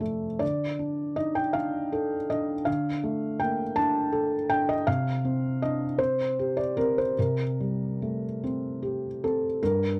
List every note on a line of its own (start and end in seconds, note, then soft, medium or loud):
0.00 0.37 F2 soft
0.00 0.44 C3 soft
0.00 0.40 D3 soft
0.00 0.44 A3 soft
0.00 0.26 A4 soft
0.00 0.39 D5 medium
0.39 2.62 D3 soft
0.39 1.17 D5 medium
0.79 1.40 D4 soft
1.16 1.55 D#4 soft
1.16 1.36 D#5 medium
1.35 1.55 G5 medium
1.53 2.15 D4 soft
1.53 2.29 F5 medium
1.92 2.52 A4 soft
2.30 2.89 D4 soft
2.30 2.67 D#5 medium
2.65 4.83 D3 soft
2.65 3.39 F5 medium
3.04 3.62 A3 soft
3.40 3.77 A#3 soft
3.40 3.76 G5 medium
3.76 4.35 D4 soft
3.76 4.50 A5 medium
4.12 4.72 A4 medium
4.50 4.87 D4 soft
4.50 4.69 G5 medium
4.69 4.87 D#5 medium
4.87 7.12 C3 medium
4.87 5.61 F5 medium
5.25 5.84 C4 soft
5.62 5.99 D4 soft
5.62 5.99 D#5 medium
5.99 6.60 C4 soft
5.99 6.56 C5 medium
6.39 7.01 G4 soft
6.57 6.76 D5 medium
6.77 7.43 C4 soft
6.77 6.96 A#4 medium
6.98 7.18 C5 medium
7.19 9.58 C3 soft
7.19 9.22 A#4 medium
7.60 8.26 G3 soft
8.02 8.42 A3 soft
8.44 9.06 C4 soft
8.82 9.46 G4 soft
9.24 9.62 C4 soft
9.24 9.62 A4 medium
9.63 10.00 G2 soft
9.63 10.00 A#4 medium